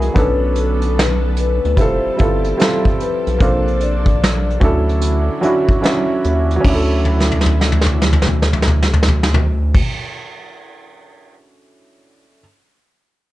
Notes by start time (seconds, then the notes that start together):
Already playing: E3 F#3 G#3 B3 D#4 E4 F#4 G#4 A#4
0.02 closed hi-hat
0.14 B1 D3 F#3 B3 C#4 D4 A4, kick, closed hi-hat
0.18 A4 B4
0.55 A4, closed hi-hat
0.82 closed hi-hat
0.99 B4, snare, closed hi-hat
1.37 B4, closed hi-hat
1.65 D2, closed hi-hat
1.76 F1 F3 G3 C4 E4 F4 G4 A4, kick, closed hi-hat
1.80 A4 C5
2.05 G1
2.16 G3 C4 E4 F4 B4, closed hi-hat
2.20 G1 A4, kick
2.44 closed hi-hat
2.57 G3 C4 E4 F4, closed hi-hat
2.61 A4, snare
2.85 kick, closed hi-hat
3.00 B4, closed hi-hat
3.27 B1, closed hi-hat
3.38 A#1 C3 A#3 C4 D4 F4 C5, kick, closed hi-hat
3.43 A4
3.68 closed hi-hat
3.80 D5, closed hi-hat
4.06 kick, closed hi-hat
4.24 snare, closed hi-hat
4.50 closed hi-hat
4.60 D2 D3 F#3 C#4 D4 E4, kick, closed hi-hat
4.65 A4
4.89 closed hi-hat
5.01 closed hi-hat
5.41 F#3 C#4 D4 E4, closed hi-hat
5.45 F#4
5.68 kick, closed hi-hat
5.82 F#3 C#4 D4 E4, snare, closed hi-hat
5.86 F#4
6.24 D#2, closed hi-hat
6.51 closed hi-hat
6.56 F#3
6.60 C#4
6.64 D2 D3 F#3 D4 E4, kick, crash
6.69 E4
6.74 A4
7.05 floor tom
7.20 snare
7.32 floor tom
7.41 snare
7.46 floor tom
7.61 snare
7.72 floor tom
7.81 snare
7.86 floor tom
8.02 snare
8.13 floor tom
8.22 snare
8.27 floor tom
8.42 snare
8.53 floor tom
8.62 snare
8.67 floor tom
8.83 snare
8.93 floor tom
9.03 snare
9.08 floor tom
9.23 snare
9.34 floor tom
9.75 kick, crash